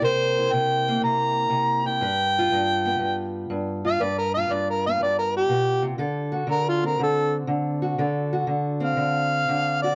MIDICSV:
0, 0, Header, 1, 3, 480
1, 0, Start_track
1, 0, Tempo, 497925
1, 29, Time_signature, 4, 2, 24, 8
1, 9592, End_track
2, 0, Start_track
2, 0, Title_t, "Harmonica"
2, 0, Program_c, 0, 22
2, 43, Note_on_c, 0, 72, 82
2, 506, Note_on_c, 0, 79, 78
2, 520, Note_off_c, 0, 72, 0
2, 972, Note_off_c, 0, 79, 0
2, 1001, Note_on_c, 0, 82, 84
2, 1773, Note_off_c, 0, 82, 0
2, 1799, Note_on_c, 0, 79, 100
2, 3196, Note_off_c, 0, 79, 0
2, 3731, Note_on_c, 0, 77, 91
2, 3877, Note_on_c, 0, 74, 83
2, 3891, Note_off_c, 0, 77, 0
2, 4024, Note_off_c, 0, 74, 0
2, 4030, Note_on_c, 0, 70, 76
2, 4184, Note_off_c, 0, 70, 0
2, 4189, Note_on_c, 0, 77, 81
2, 4367, Note_on_c, 0, 74, 72
2, 4381, Note_off_c, 0, 77, 0
2, 4513, Note_off_c, 0, 74, 0
2, 4530, Note_on_c, 0, 70, 64
2, 4675, Note_off_c, 0, 70, 0
2, 4686, Note_on_c, 0, 77, 83
2, 4833, Note_off_c, 0, 77, 0
2, 4844, Note_on_c, 0, 74, 84
2, 4991, Note_off_c, 0, 74, 0
2, 5000, Note_on_c, 0, 70, 68
2, 5150, Note_off_c, 0, 70, 0
2, 5176, Note_on_c, 0, 67, 90
2, 5628, Note_off_c, 0, 67, 0
2, 6281, Note_on_c, 0, 70, 89
2, 6430, Note_off_c, 0, 70, 0
2, 6447, Note_on_c, 0, 65, 72
2, 6594, Note_off_c, 0, 65, 0
2, 6615, Note_on_c, 0, 70, 72
2, 6758, Note_off_c, 0, 70, 0
2, 6780, Note_on_c, 0, 69, 84
2, 7079, Note_off_c, 0, 69, 0
2, 8521, Note_on_c, 0, 77, 83
2, 9447, Note_off_c, 0, 77, 0
2, 9471, Note_on_c, 0, 74, 78
2, 9592, Note_off_c, 0, 74, 0
2, 9592, End_track
3, 0, Start_track
3, 0, Title_t, "Steel-string acoustic guitar"
3, 0, Program_c, 1, 25
3, 0, Note_on_c, 1, 58, 51
3, 18, Note_on_c, 1, 48, 68
3, 20, Note_on_c, 1, 70, 64
3, 366, Note_on_c, 1, 64, 55
3, 503, Note_off_c, 1, 48, 0
3, 513, Note_on_c, 1, 48, 67
3, 833, Note_off_c, 1, 58, 0
3, 850, Note_on_c, 1, 58, 56
3, 970, Note_off_c, 1, 48, 0
3, 981, Note_on_c, 1, 48, 70
3, 1430, Note_off_c, 1, 48, 0
3, 1442, Note_on_c, 1, 48, 68
3, 1782, Note_off_c, 1, 64, 0
3, 1794, Note_on_c, 1, 64, 54
3, 1923, Note_off_c, 1, 70, 0
3, 1930, Note_off_c, 1, 64, 0
3, 1934, Note_off_c, 1, 48, 0
3, 1937, Note_on_c, 1, 43, 70
3, 1951, Note_on_c, 1, 71, 67
3, 1956, Note_off_c, 1, 58, 0
3, 2300, Note_on_c, 1, 65, 62
3, 2428, Note_off_c, 1, 43, 0
3, 2432, Note_on_c, 1, 43, 71
3, 2750, Note_on_c, 1, 59, 53
3, 2883, Note_off_c, 1, 43, 0
3, 2887, Note_on_c, 1, 43, 61
3, 3361, Note_off_c, 1, 43, 0
3, 3373, Note_on_c, 1, 43, 66
3, 3697, Note_off_c, 1, 65, 0
3, 3709, Note_on_c, 1, 65, 54
3, 3846, Note_off_c, 1, 71, 0
3, 3847, Note_off_c, 1, 65, 0
3, 3848, Note_off_c, 1, 59, 0
3, 3852, Note_off_c, 1, 43, 0
3, 3858, Note_on_c, 1, 71, 65
3, 3864, Note_on_c, 1, 43, 68
3, 4210, Note_on_c, 1, 65, 59
3, 4320, Note_off_c, 1, 43, 0
3, 4332, Note_on_c, 1, 43, 70
3, 4693, Note_on_c, 1, 59, 53
3, 4817, Note_off_c, 1, 43, 0
3, 4828, Note_on_c, 1, 43, 72
3, 5287, Note_off_c, 1, 43, 0
3, 5291, Note_on_c, 1, 47, 60
3, 5613, Note_on_c, 1, 48, 56
3, 5623, Note_off_c, 1, 47, 0
3, 5762, Note_off_c, 1, 48, 0
3, 5765, Note_off_c, 1, 71, 0
3, 5765, Note_on_c, 1, 50, 73
3, 5775, Note_on_c, 1, 69, 64
3, 5780, Note_off_c, 1, 65, 0
3, 5781, Note_off_c, 1, 59, 0
3, 6092, Note_on_c, 1, 66, 58
3, 6232, Note_off_c, 1, 50, 0
3, 6236, Note_on_c, 1, 50, 71
3, 6587, Note_on_c, 1, 60, 50
3, 6740, Note_off_c, 1, 50, 0
3, 6743, Note_on_c, 1, 50, 68
3, 7201, Note_off_c, 1, 50, 0
3, 7205, Note_on_c, 1, 50, 70
3, 7535, Note_off_c, 1, 66, 0
3, 7539, Note_on_c, 1, 66, 52
3, 7692, Note_off_c, 1, 50, 0
3, 7695, Note_on_c, 1, 50, 66
3, 7699, Note_off_c, 1, 69, 0
3, 7703, Note_on_c, 1, 69, 63
3, 7724, Note_off_c, 1, 60, 0
3, 8024, Note_off_c, 1, 66, 0
3, 8028, Note_on_c, 1, 66, 64
3, 8161, Note_off_c, 1, 50, 0
3, 8165, Note_on_c, 1, 50, 68
3, 8487, Note_on_c, 1, 60, 52
3, 8639, Note_off_c, 1, 50, 0
3, 8643, Note_on_c, 1, 50, 69
3, 9132, Note_off_c, 1, 50, 0
3, 9144, Note_on_c, 1, 50, 70
3, 9471, Note_off_c, 1, 66, 0
3, 9485, Note_on_c, 1, 66, 55
3, 9592, Note_off_c, 1, 50, 0
3, 9592, Note_off_c, 1, 60, 0
3, 9592, Note_off_c, 1, 66, 0
3, 9592, Note_off_c, 1, 69, 0
3, 9592, End_track
0, 0, End_of_file